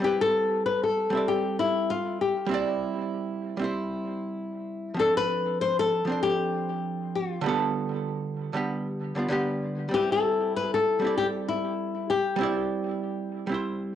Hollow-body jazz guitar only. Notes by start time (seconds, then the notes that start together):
0.00 G3 C4 E4
0.06 B4
1.10 G3 C4
1.15 D5 E5
2.46 G3 C4
2.51 E4 D5
3.57 G3 C4
3.62 E4 C5
4.94 F3 C4
4.99 D4 A4
6.05 F3 C4
6.10 D4 C5
7.41 D3 G3
7.46 B3 A4
8.53 D3 G3 B3 G4
9.15 D3 G3 B3 F4
9.29 D3 G3 B3 G4
9.89 G3 C4
9.94 E4 B4
10.99 G3 C4
11.04 E4 D5
12.36 G3 C4
12.41 E4 D5
13.47 G3 C4
13.52 E4 C5